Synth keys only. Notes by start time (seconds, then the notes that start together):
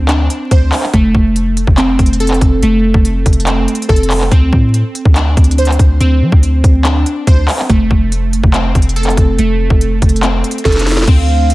Already playing: C4 C5
0.09 D4
0.51 C5
0.93 A3
1.78 C4
2.20 A4
2.63 A3
3.47 C4
3.89 A4
4.32 C4
5.16 D4
5.58 C5
6.00 C4
6.85 D4
7.27 C5
7.69 A3
8.54 C4
8.96 A4
9.39 A3
10.23 C4
10.65 A4
11.08 C4